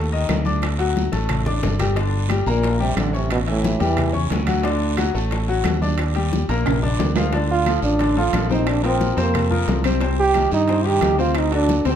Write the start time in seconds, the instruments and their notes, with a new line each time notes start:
Already playing: fingered electric bass D#2
0.12 upright piano D#3 D#4 D#5, high conga
0.28 fingered electric bass D2, high bongo, low bongo, high conga, high timbale, low timbale, short guiro, claves
0.45 upright piano D4 D5 D6, high bongo, high conga, short guiro
0.62 high bongo, high conga, high timbale, long guiro, claves
0.78 upright piano F#3 F#4 F#5, high conga, high timbale
0.96 high bongo, high conga, short guiro
1.12 fingered electric bass A1, upright piano A3 A4 A5, high bongo, high conga, high timbale, short guiro
1.29 high bongo, low conga, high timbale, long guiro, claves
1.46 upright piano D4 D5 D6, high bongo, low conga
1.63 fingered electric bass G1, high bongo, low bongo, low conga, high timbale, low timbale, short guiro
1.79 upright piano G3 G4 G5, high bongo, low conga, high timbale, short guiro, claves
1.96 upright piano D3 D4 D5, high bongo, high conga, high timbale, long guiro
2.13 high bongo, high conga
2.29 upright piano G3 G4 G5, high bongo, high conga, high timbale, short guiro, claves
2.46 fingered electric bass A#1, trombone A#2, upright piano A#3 A#4 A#5, high bongo, short guiro
2.63 high bongo, high conga, high timbale, long guiro
2.80 trombone C3, upright piano G3 G4 G5, high conga
2.97 fingered electric bass A1, trombone D3, high bongo, low bongo, high conga, high timbale, short guiro, claves
3.13 trombone C3, upright piano C#4 C#5 C#6, high bongo, short guiro
3.30 trombone B2, high bongo, high conga, high timbale, long guiro, claves
3.47 trombone A2, upright piano E3 E4 E5, high conga, high timbale
3.64 high bongo, high conga, short guiro
3.79 fingered electric bass E2, trombone E3, upright piano G3 G4 G5, high bongo, high conga, high timbale, short guiro
3.97 high bongo, high conga, low conga, high timbale, long guiro, claves
4.13 upright piano C#4 C#5 C#6, high bongo, high conga, low conga
4.30 fingered electric bass D2, high bongo, low bongo, high conga, high timbale, low timbale, short guiro
4.47 upright piano F#3 F#4 F#5, high bongo, high conga, high timbale, short guiro, claves
4.63 upright piano D3 D4 D5, high bongo, high timbale, long guiro
4.81 high bongo, high conga
4.97 upright piano F#3 F#4 F#5, high bongo, high conga, high timbale, short guiro, claves
5.14 fingered electric bass A1, upright piano A3 A4 A5, high bongo, short guiro
5.31 high bongo, high conga, high timbale, long guiro
5.48 upright piano F#3 F#4 F#5, high conga
5.64 fingered electric bass D#2, high bongo, low bongo, high conga, high timbale, low timbale, short guiro, claves
5.82 upright piano D4 D5 D6, high bongo, high conga, short guiro
5.98 high bongo, high conga, high timbale, long guiro, claves
6.15 upright piano G3 G4 G5, high conga, high timbale
6.33 high bongo, high conga, short guiro
6.49 fingered electric bass A#1, upright piano A#3 A#4 A#5, high bongo, high conga, high timbale, short guiro
6.66 high bongo, high conga, low conga, high timbale, long guiro, claves
6.82 upright piano D4 D5 D6, high bongo, high conga, low conga
6.99 fingered electric bass D2, high bongo, low bongo, high conga, low timbale, short guiro
7.16 upright piano F3 F4 F5, high bongo, high conga, low timbale, short guiro, claves
7.33 upright piano D3 D4 D5, high bongo, high timbale, long guiro
7.49 trombone F4, high bongo, high conga
7.66 upright piano F3 F4 A4, high bongo, high conga, high timbale, short guiro, claves
7.82 fingered electric bass A1, trombone D4, high bongo, short guiro
7.99 upright piano D3 D4 D5, high bongo, high conga, high timbale, long guiro
8.16 upright piano F3 F4 A4, trombone F4, high conga
8.33 fingered electric bass A#1, upright piano F3 F4 A4, high bongo, low bongo, high conga, high timbale, low timbale, short guiro, claves
8.50 upright piano C3 C4 C5, trombone D#4, high bongo, high conga, short guiro
8.67 trombone D4, high bongo, high timbale, long guiro, claves
8.83 upright piano F3 F4 A#4, trombone C4, high conga, high timbale
9.01 high bongo, high conga, short guiro
9.17 fingered electric bass F2, upright piano C3 C4 C5, trombone A#3, high bongo, high conga, high timbale, short guiro
9.34 high bongo, high conga, low conga, high timbale, long guiro, claves
9.50 upright piano F3 F4 A#4, high bongo, high conga, low conga
9.68 fingered electric bass C2, high bongo, low bongo, high conga, high timbale, low timbale, short guiro
9.84 upright piano C3 C4 C5, high bongo, high conga, high timbale, short guiro, claves
10.01 upright piano C3 C4 C5, high bongo, high conga, high timbale, long guiro
10.18 trombone G4, high bongo, high conga
10.34 upright piano D#3 D#4 G4, high bongo, high conga, high timbale, short guiro, claves
10.51 fingered electric bass G2, trombone D#4, high bongo, short guiro
10.68 upright piano C3 C4 C5, high bongo, high conga, high timbale, long guiro
10.84 upright piano D#3 D#4 G4, trombone G4, high conga
11.01 fingered electric bass D2, upright piano D#3 D#4 G4, high bongo, low bongo, high conga, high timbale, low timbale, short guiro, claves
11.18 upright piano C3 C4 C5, trombone F4, high bongo, short guiro
11.35 trombone D#4, high bongo, high conga, high timbale, long guiro, claves
11.51 upright piano F#3 F#4 A4, trombone D4, high conga, high timbale
11.69 high bongo, high conga, short guiro
11.85 fingered electric bass D2, upright piano C3 C4 C5, trombone C4, high bongo, high conga, high timbale, short guiro